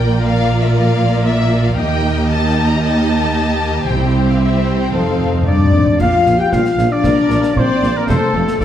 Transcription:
0.00 1.76 A#1 medium
0.00 1.76 A#2 medium
0.00 3.84 A#3 medium
0.00 1.76 F4 medium
0.00 1.76 A#4 medium
0.00 1.76 D5 medium
0.00 0.23 G5 medium
0.24 0.62 F5 loud
0.63 0.76 E5 medium
0.74 1.26 F5 loud
1.25 1.65 E5 loud
1.66 1.79 F5 medium
1.76 3.88 D#2 medium
1.76 3.84 D#4 medium
1.76 4.90 G4 medium
1.76 3.84 D#5 medium
1.76 2.30 G5 loud
1.81 3.89 D#2 medium
2.29 2.69 A5 loud
2.69 2.83 A#5 loud
2.82 3.85 A5 loud
3.88 4.92 C2 medium
3.88 4.64 C3 medium
3.88 5.77 C4 medium
3.88 4.92 E4 medium
3.88 5.48 C5 medium
3.88 4.27 G5 medium
4.29 4.41 F5 medium
4.38 4.80 E5 medium
4.81 4.94 G5 medium
4.94 5.80 F1 medium
4.94 5.43 F2 medium
4.94 5.02 F2 soft
4.94 5.79 D#4 soft
4.94 5.48 A4 medium
4.94 5.47 F5 medium
5.03 5.10 F2 soft
5.11 5.17 F2 soft
5.19 5.24 F2 soft
5.25 5.32 F2 soft
5.33 5.40 F2 soft
5.42 5.48 F2 soft
5.46 5.55 F2 medium
5.46 5.72 G2 medium
5.46 5.96 D4 medium
5.46 5.96 D5 medium
5.46 5.97 D5 medium
5.46 6.02 D5 medium
5.56 5.63 F2 medium
5.64 5.70 F2 medium
5.71 5.78 F2 medium
5.71 6.00 F2 medium
5.80 5.85 F2 medium
5.87 5.93 F2 medium
5.99 6.08 A#1 medium
5.99 6.11 A#1 medium
5.99 6.08 A#2 medium
5.99 6.39 F4 medium
5.99 6.07 F5 medium
5.99 6.38 F5 medium
5.99 6.41 F5 medium
5.99 6.40 F5 medium
5.99 concert bass drum medium
5.99 crash soft
6.26 6.37 A#1 medium
6.26 6.35 A#1 medium
6.26 6.36 A#2 medium
6.26 6.34 F5 soft
6.26 snare soft
6.38 6.52 G4 medium
6.38 6.54 G5 medium
6.38 6.53 G5 medium
6.38 6.55 G5 medium
6.49 6.61 A#1 medium
6.49 6.63 A#1 medium
6.49 6.90 F4 medium
6.49 6.59 F5 medium
6.49 6.91 F5 medium
6.49 concert bass drum medium
6.49 snare medium
6.53 6.61 A#2 medium
6.53 6.94 F5 medium
6.53 6.92 F5 medium
6.65 snare soft
6.77 6.85 A#1 medium
6.77 6.89 A#1 medium
6.77 6.87 A#2 medium
6.77 6.86 F5 soft
6.77 snare medium
6.91 7.55 D4 medium
6.91 7.58 D5 medium
6.91 7.61 D5 medium
6.91 7.56 D5 medium
6.91 7.57 D5 medium
7.02 7.15 A#1 medium
7.02 7.13 A#1 medium
7.02 7.12 A#2 medium
7.02 7.53 A#4 medium
7.02 7.10 F5 medium
7.02 concert bass drum medium
7.02 snare medium
7.28 7.40 A#1 medium
7.28 7.38 A#1 medium
7.28 7.38 A#2 medium
7.28 7.36 F5 medium
7.28 snare soft
7.43 snare medium
7.54 7.66 A#1 medium
7.54 7.64 A#1 medium
7.54 7.64 A#2 medium
7.54 7.95 C4 medium
7.54 7.95 C5 medium
7.54 7.96 C5 medium
7.54 8.09 D5 medium
7.54 7.62 F5 medium
7.54 concert bass drum medium
7.60 7.98 C5 medium
7.60 7.97 C5 medium
7.81 7.90 A#1 medium
7.81 7.93 A#1 medium
7.81 7.89 A#2 medium
7.81 7.89 F5 soft
7.81 snare soft
7.93 8.07 A#3 medium
7.93 8.07 A#4 medium
7.97 8.09 A#4 medium
7.97 8.10 A#4 medium
8.07 8.19 F1 medium
8.07 8.16 F1 medium
8.07 8.16 F2 medium
8.07 8.59 A3 medium
8.07 8.59 A4 medium
8.07 8.60 A4 medium
8.07 8.34 C5 medium
8.07 8.16 F5 medium
8.07 concert bass drum medium
8.07 snare medium
8.34 8.42 F1 medium
8.34 8.45 F1 medium
8.34 8.42 F2 medium
8.34 8.61 A4 medium
8.34 8.42 F5 medium
8.48 snare medium
8.60 8.65 F1 medium
8.60 8.65 F2 medium
8.60 8.65 A3 medium
8.60 8.65 A4 medium
8.60 8.65 D5 medium
8.60 8.65 F5 medium
8.60 concert bass drum medium
8.60 snare medium

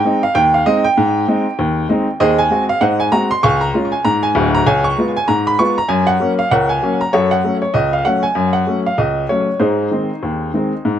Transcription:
0.00 0.21 G5 loud
0.05 0.22 G#3 medium
0.05 0.22 C4 medium
0.05 0.22 D#4 medium
0.23 0.35 F5 loud
0.35 0.61 D#2 medium
0.35 0.53 G5 loud
0.54 0.66 F5 loud
0.66 0.83 G#3 medium
0.66 0.83 C4 medium
0.66 0.84 D#4 medium
0.66 0.84 D#5 loud
0.84 2.16 G5 loud
0.97 1.23 G#2 loud
1.28 1.45 G#3 medium
1.28 1.45 C4 medium
1.28 1.45 D#4 medium
1.59 1.85 D#2 medium
1.89 2.06 G#3 medium
1.89 2.07 C4 medium
1.89 2.07 D#4 medium
2.20 2.46 D#2 loud
2.20 2.38 G#4 medium
2.20 2.37 C5 medium
2.20 2.38 D#5 loud
2.38 2.63 G#5 loud
2.50 2.67 G#3 medium
2.50 2.68 C4 medium
2.50 2.68 F#4 medium
2.69 2.82 F5 loud
2.81 3.07 G#2 medium
2.81 2.99 C5 medium
2.81 2.99 D#5 medium
2.81 2.99 F#5 loud
3.00 3.12 G#5 loud
3.12 3.29 G#3 medium
3.12 3.30 C4 medium
3.12 3.30 F#4 medium
3.12 3.30 A#5 loud
3.31 3.43 C6 loud
3.43 3.70 C#2 loud
3.43 3.61 F5 medium
3.43 3.61 G#5 medium
3.43 3.61 C#6 loud
3.61 3.90 A#5 loud
3.74 3.91 G#3 medium
3.74 3.91 C#4 medium
3.74 3.92 F4 medium
3.92 4.05 G#5 medium
4.05 4.31 G#2 loud
4.05 4.23 A#5 loud
4.23 4.47 G#5 loud
4.35 4.60 D1 loud
4.35 4.60 D2 loud
4.55 4.67 A#5 loud
4.66 4.93 C#2 loud
4.66 4.84 C#5 medium
4.66 4.84 F5 medium
4.66 4.85 G#5 loud
4.84 5.09 C#6 loud
4.98 5.15 G#3 medium
4.98 5.15 B3 medium
4.98 5.15 F4 medium
5.17 5.29 G#5 loud
5.28 5.54 G#2 medium
5.28 5.46 A#5 loud
5.47 5.59 B5 loud
5.59 5.76 G#3 medium
5.59 5.76 B3 medium
5.59 5.76 F4 medium
5.59 5.77 C#6 loud
5.78 5.90 A#5 loud
5.88 6.15 F#2 loud
5.88 6.07 G#5 loud
6.07 6.32 F#5 loud
6.20 6.37 F#3 medium
6.20 6.37 A#3 medium
6.20 6.38 C#4 medium
6.39 6.51 F5 medium
6.51 6.78 C#2 medium
6.51 6.69 A#4 medium
6.51 6.69 C#5 medium
6.51 6.70 F#5 loud
6.69 6.99 G#5 loud
6.83 6.99 F#3 medium
6.83 7.00 A#3 medium
6.83 7.00 C#4 medium
7.01 7.13 A#5 medium
7.13 7.40 F#2 medium
7.13 7.31 F#4 medium
7.13 7.31 A4 medium
7.13 7.31 C#5 loud
7.31 7.56 F#5 loud
7.44 7.61 F#3 medium
7.44 7.61 A3 medium
7.44 7.61 C#4 medium
7.62 7.75 C#5 medium
7.74 8.01 C#2 medium
7.74 7.93 D#5 loud
7.93 8.06 F5 medium
8.05 8.22 F#3 medium
8.05 8.23 A3 medium
8.05 8.23 C#4 medium
8.05 8.24 F#5 loud
8.23 8.48 G#5 medium
8.35 8.62 F#2 medium
8.53 8.79 F#5 medium
8.67 8.84 F#3 medium
8.67 8.85 A3 soft
8.67 8.85 C#4 medium
8.86 8.99 F5 medium
8.98 9.25 C#2 medium
8.98 9.23 D#5 medium
9.29 9.47 F#3 medium
9.29 9.47 A3 soft
9.29 9.48 C#4 medium
9.29 9.59 C#5 medium
9.60 9.87 G#2 medium
9.60 10.99 D#4 medium
9.60 10.99 G#4 medium
9.60 10.99 C5 medium
9.91 10.09 D#3 soft
9.91 10.09 G#3 medium
9.91 10.09 C4 medium
10.23 10.49 D#2 medium
10.54 10.71 D#3 soft
10.54 10.72 G#3 medium
10.54 10.72 C4 medium
10.85 10.99 G#2 medium

